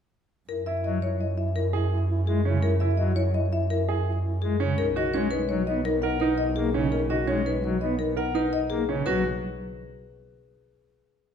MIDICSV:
0, 0, Header, 1, 6, 480
1, 0, Start_track
1, 0, Key_signature, 5, "major"
1, 0, Tempo, 357143
1, 659, Time_signature, 6, 2, 24, 8
1, 15252, End_track
2, 0, Start_track
2, 0, Title_t, "Marimba"
2, 0, Program_c, 0, 12
2, 654, Note_on_c, 0, 70, 66
2, 891, Note_on_c, 0, 76, 50
2, 969, Note_off_c, 0, 70, 0
2, 1134, Note_on_c, 0, 75, 58
2, 1208, Note_off_c, 0, 76, 0
2, 1376, Note_on_c, 0, 73, 60
2, 1449, Note_off_c, 0, 75, 0
2, 1620, Note_on_c, 0, 75, 50
2, 1690, Note_off_c, 0, 73, 0
2, 1849, Note_on_c, 0, 76, 53
2, 1931, Note_off_c, 0, 75, 0
2, 2092, Note_on_c, 0, 70, 68
2, 2167, Note_off_c, 0, 76, 0
2, 2408, Note_off_c, 0, 70, 0
2, 3055, Note_on_c, 0, 68, 61
2, 3369, Note_off_c, 0, 68, 0
2, 3528, Note_on_c, 0, 70, 75
2, 3765, Note_on_c, 0, 76, 58
2, 3847, Note_off_c, 0, 70, 0
2, 3997, Note_on_c, 0, 75, 64
2, 4086, Note_off_c, 0, 76, 0
2, 4247, Note_on_c, 0, 73, 73
2, 4323, Note_off_c, 0, 75, 0
2, 4495, Note_on_c, 0, 75, 58
2, 4566, Note_off_c, 0, 73, 0
2, 4739, Note_on_c, 0, 76, 67
2, 4809, Note_off_c, 0, 75, 0
2, 4977, Note_on_c, 0, 70, 74
2, 5050, Note_off_c, 0, 76, 0
2, 5290, Note_off_c, 0, 70, 0
2, 5937, Note_on_c, 0, 68, 62
2, 6250, Note_off_c, 0, 68, 0
2, 6425, Note_on_c, 0, 70, 88
2, 6678, Note_on_c, 0, 75, 64
2, 6732, Note_off_c, 0, 70, 0
2, 6902, Note_on_c, 0, 73, 67
2, 6977, Note_off_c, 0, 75, 0
2, 7132, Note_on_c, 0, 71, 82
2, 7211, Note_off_c, 0, 73, 0
2, 7375, Note_on_c, 0, 73, 60
2, 7448, Note_off_c, 0, 71, 0
2, 7622, Note_on_c, 0, 75, 64
2, 7689, Note_off_c, 0, 73, 0
2, 7864, Note_on_c, 0, 70, 88
2, 7931, Note_off_c, 0, 75, 0
2, 8090, Note_on_c, 0, 78, 60
2, 8172, Note_off_c, 0, 70, 0
2, 8332, Note_on_c, 0, 71, 68
2, 8407, Note_off_c, 0, 78, 0
2, 8570, Note_on_c, 0, 75, 76
2, 8648, Note_off_c, 0, 71, 0
2, 8814, Note_on_c, 0, 68, 67
2, 8887, Note_off_c, 0, 75, 0
2, 9129, Note_off_c, 0, 68, 0
2, 9299, Note_on_c, 0, 70, 70
2, 9544, Note_on_c, 0, 75, 62
2, 9610, Note_off_c, 0, 70, 0
2, 9780, Note_on_c, 0, 73, 59
2, 9852, Note_off_c, 0, 75, 0
2, 10029, Note_on_c, 0, 71, 71
2, 10091, Note_off_c, 0, 73, 0
2, 10266, Note_on_c, 0, 73, 53
2, 10334, Note_off_c, 0, 71, 0
2, 10499, Note_on_c, 0, 75, 61
2, 10573, Note_off_c, 0, 73, 0
2, 10735, Note_on_c, 0, 70, 72
2, 10811, Note_off_c, 0, 75, 0
2, 10983, Note_on_c, 0, 78, 64
2, 11049, Note_off_c, 0, 70, 0
2, 11224, Note_on_c, 0, 71, 66
2, 11292, Note_off_c, 0, 78, 0
2, 11462, Note_on_c, 0, 75, 80
2, 11532, Note_off_c, 0, 71, 0
2, 11689, Note_on_c, 0, 68, 71
2, 11771, Note_off_c, 0, 75, 0
2, 12007, Note_off_c, 0, 68, 0
2, 12174, Note_on_c, 0, 71, 75
2, 12399, Note_off_c, 0, 71, 0
2, 15252, End_track
3, 0, Start_track
3, 0, Title_t, "Grand piano"
3, 0, Program_c, 1, 0
3, 897, Note_on_c, 1, 64, 47
3, 1210, Note_off_c, 1, 64, 0
3, 2328, Note_on_c, 1, 68, 51
3, 2647, Note_off_c, 1, 68, 0
3, 3295, Note_on_c, 1, 61, 50
3, 3609, Note_off_c, 1, 61, 0
3, 3776, Note_on_c, 1, 64, 53
3, 4089, Note_off_c, 1, 64, 0
3, 5222, Note_on_c, 1, 68, 55
3, 5531, Note_off_c, 1, 68, 0
3, 6181, Note_on_c, 1, 61, 66
3, 6491, Note_off_c, 1, 61, 0
3, 6667, Note_on_c, 1, 66, 59
3, 6912, Note_on_c, 1, 61, 59
3, 6973, Note_off_c, 1, 66, 0
3, 7215, Note_off_c, 1, 61, 0
3, 8106, Note_on_c, 1, 70, 64
3, 8349, Note_on_c, 1, 63, 63
3, 8413, Note_off_c, 1, 70, 0
3, 8654, Note_off_c, 1, 63, 0
3, 9063, Note_on_c, 1, 61, 58
3, 9372, Note_off_c, 1, 61, 0
3, 9541, Note_on_c, 1, 66, 55
3, 9774, Note_on_c, 1, 61, 55
3, 9851, Note_off_c, 1, 66, 0
3, 10089, Note_off_c, 1, 61, 0
3, 10975, Note_on_c, 1, 70, 55
3, 11217, Note_on_c, 1, 63, 58
3, 11289, Note_off_c, 1, 70, 0
3, 11530, Note_off_c, 1, 63, 0
3, 11945, Note_on_c, 1, 61, 53
3, 12179, Note_on_c, 1, 66, 75
3, 12253, Note_off_c, 1, 61, 0
3, 12402, Note_off_c, 1, 66, 0
3, 15252, End_track
4, 0, Start_track
4, 0, Title_t, "French horn"
4, 0, Program_c, 2, 60
4, 667, Note_on_c, 2, 64, 26
4, 832, Note_off_c, 2, 64, 0
4, 897, Note_on_c, 2, 64, 31
4, 1066, Note_off_c, 2, 64, 0
4, 1137, Note_on_c, 2, 64, 42
4, 1306, Note_off_c, 2, 64, 0
4, 1382, Note_on_c, 2, 64, 48
4, 1549, Note_off_c, 2, 64, 0
4, 1611, Note_on_c, 2, 64, 45
4, 1781, Note_off_c, 2, 64, 0
4, 1848, Note_on_c, 2, 64, 54
4, 2020, Note_off_c, 2, 64, 0
4, 2093, Note_on_c, 2, 64, 57
4, 2263, Note_off_c, 2, 64, 0
4, 2336, Note_on_c, 2, 64, 61
4, 2505, Note_off_c, 2, 64, 0
4, 2583, Note_on_c, 2, 64, 62
4, 2749, Note_off_c, 2, 64, 0
4, 2813, Note_on_c, 2, 64, 62
4, 2983, Note_off_c, 2, 64, 0
4, 3060, Note_on_c, 2, 64, 65
4, 3228, Note_off_c, 2, 64, 0
4, 3297, Note_on_c, 2, 64, 63
4, 3465, Note_off_c, 2, 64, 0
4, 3530, Note_on_c, 2, 64, 70
4, 3701, Note_off_c, 2, 64, 0
4, 3778, Note_on_c, 2, 64, 62
4, 3946, Note_off_c, 2, 64, 0
4, 4014, Note_on_c, 2, 64, 66
4, 4184, Note_off_c, 2, 64, 0
4, 4250, Note_on_c, 2, 64, 66
4, 4421, Note_off_c, 2, 64, 0
4, 4501, Note_on_c, 2, 64, 68
4, 4668, Note_off_c, 2, 64, 0
4, 4746, Note_on_c, 2, 64, 59
4, 4911, Note_off_c, 2, 64, 0
4, 4988, Note_on_c, 2, 64, 62
4, 5153, Note_off_c, 2, 64, 0
4, 5227, Note_on_c, 2, 64, 55
4, 5392, Note_off_c, 2, 64, 0
4, 5464, Note_on_c, 2, 64, 42
4, 5630, Note_off_c, 2, 64, 0
4, 5705, Note_on_c, 2, 64, 42
4, 5870, Note_off_c, 2, 64, 0
4, 5944, Note_on_c, 2, 64, 32
4, 6110, Note_off_c, 2, 64, 0
4, 6426, Note_on_c, 2, 63, 34
4, 6591, Note_off_c, 2, 63, 0
4, 6665, Note_on_c, 2, 63, 37
4, 6831, Note_off_c, 2, 63, 0
4, 6900, Note_on_c, 2, 63, 50
4, 7068, Note_off_c, 2, 63, 0
4, 7145, Note_on_c, 2, 63, 53
4, 7310, Note_off_c, 2, 63, 0
4, 7384, Note_on_c, 2, 63, 56
4, 7550, Note_off_c, 2, 63, 0
4, 7630, Note_on_c, 2, 63, 64
4, 7794, Note_off_c, 2, 63, 0
4, 7869, Note_on_c, 2, 63, 72
4, 8033, Note_off_c, 2, 63, 0
4, 8110, Note_on_c, 2, 63, 69
4, 8274, Note_off_c, 2, 63, 0
4, 8339, Note_on_c, 2, 63, 66
4, 8507, Note_off_c, 2, 63, 0
4, 8582, Note_on_c, 2, 63, 64
4, 8749, Note_off_c, 2, 63, 0
4, 8808, Note_on_c, 2, 63, 72
4, 8980, Note_off_c, 2, 63, 0
4, 9055, Note_on_c, 2, 63, 63
4, 9224, Note_off_c, 2, 63, 0
4, 9284, Note_on_c, 2, 63, 67
4, 9457, Note_off_c, 2, 63, 0
4, 9527, Note_on_c, 2, 63, 65
4, 9699, Note_off_c, 2, 63, 0
4, 9773, Note_on_c, 2, 63, 67
4, 9943, Note_off_c, 2, 63, 0
4, 10021, Note_on_c, 2, 63, 66
4, 10188, Note_off_c, 2, 63, 0
4, 10263, Note_on_c, 2, 63, 62
4, 10430, Note_off_c, 2, 63, 0
4, 10497, Note_on_c, 2, 63, 57
4, 10666, Note_off_c, 2, 63, 0
4, 10743, Note_on_c, 2, 63, 58
4, 10909, Note_off_c, 2, 63, 0
4, 10980, Note_on_c, 2, 63, 55
4, 11147, Note_off_c, 2, 63, 0
4, 11222, Note_on_c, 2, 63, 44
4, 11388, Note_off_c, 2, 63, 0
4, 11462, Note_on_c, 2, 63, 41
4, 11629, Note_off_c, 2, 63, 0
4, 11707, Note_on_c, 2, 63, 32
4, 11872, Note_off_c, 2, 63, 0
4, 15252, End_track
5, 0, Start_track
5, 0, Title_t, "Pipe organ"
5, 0, Program_c, 3, 19
5, 1141, Note_on_c, 3, 54, 55
5, 1320, Note_off_c, 3, 54, 0
5, 3055, Note_on_c, 3, 56, 57
5, 3236, Note_off_c, 3, 56, 0
5, 3288, Note_on_c, 3, 49, 59
5, 3472, Note_off_c, 3, 49, 0
5, 4009, Note_on_c, 3, 54, 55
5, 4193, Note_off_c, 3, 54, 0
5, 5951, Note_on_c, 3, 56, 64
5, 6126, Note_off_c, 3, 56, 0
5, 6186, Note_on_c, 3, 49, 64
5, 6363, Note_off_c, 3, 49, 0
5, 6908, Note_on_c, 3, 56, 70
5, 7084, Note_off_c, 3, 56, 0
5, 7378, Note_on_c, 3, 54, 67
5, 7558, Note_off_c, 3, 54, 0
5, 7620, Note_on_c, 3, 59, 61
5, 7799, Note_off_c, 3, 59, 0
5, 8820, Note_on_c, 3, 58, 66
5, 8999, Note_off_c, 3, 58, 0
5, 9057, Note_on_c, 3, 49, 64
5, 9237, Note_off_c, 3, 49, 0
5, 9788, Note_on_c, 3, 56, 60
5, 9964, Note_off_c, 3, 56, 0
5, 10260, Note_on_c, 3, 54, 64
5, 10440, Note_off_c, 3, 54, 0
5, 10499, Note_on_c, 3, 59, 58
5, 10679, Note_off_c, 3, 59, 0
5, 11703, Note_on_c, 3, 58, 63
5, 11881, Note_off_c, 3, 58, 0
5, 11948, Note_on_c, 3, 49, 60
5, 12124, Note_off_c, 3, 49, 0
5, 12186, Note_on_c, 3, 54, 67
5, 12406, Note_off_c, 3, 54, 0
5, 15252, End_track
6, 0, Start_track
6, 0, Title_t, "Double bass"
6, 0, Program_c, 4, 43
6, 661, Note_on_c, 4, 42, 54
6, 6270, Note_off_c, 4, 42, 0
6, 6422, Note_on_c, 4, 35, 67
6, 12030, Note_off_c, 4, 35, 0
6, 12181, Note_on_c, 4, 35, 61
6, 12403, Note_off_c, 4, 35, 0
6, 15252, End_track
0, 0, End_of_file